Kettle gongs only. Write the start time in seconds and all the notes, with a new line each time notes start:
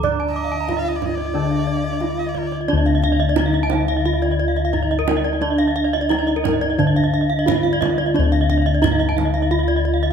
Already playing: D2
0.04 D5
0.68 D#4
1.35 D3
2.01 D#4
2.68 D4
2.73 D2
3.38 D#4
4.74 D#4
5.42 D4
6.09 D#4
6.78 D3
7.47 D#4
8.14 D4
8.19 D2
8.83 D#4